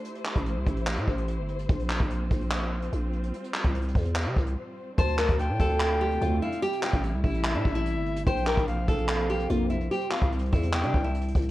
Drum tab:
HH |x--x--x--x--x-----x--x--x--x-----x--x-----x--x--|x--x--x--x--x-----x--x--x--x-----x--x-----x--x--|x--x--x--x--x-x-x-o--x--x--x-----x--------------|x--x--x--x--x-----x--x--x--x-----x--x-----x--x--|
CP |------x-----------------x-----------------------|------x-----------------x-----------------------|------x-----------------x-----------------------|------x-----------------x-----------------------|
BD |---------o--------o-----------o-----------------|o--------o--------o-----------------------------|---------o--------o-----------o-----------------|o--------o--------o-----------------------------|

HH |x--x--x--x--x-----x--x--x--x-----x--x-----x--x--|x--x--x--x--x-----x--x--x--x-----x--x-----x--x--|x--x--x--x--x-x-x-o--x--x--x-----x--x-x-x-x-x---|
CP |------x-----------------x-----------------------|------x-----------------x-----------------------|------x-----------------x-----------------------|
BD |---------o--------o-----------o-----------------|o--------o--------o-----------------------------|---------o--------o-----------o-----------o-----|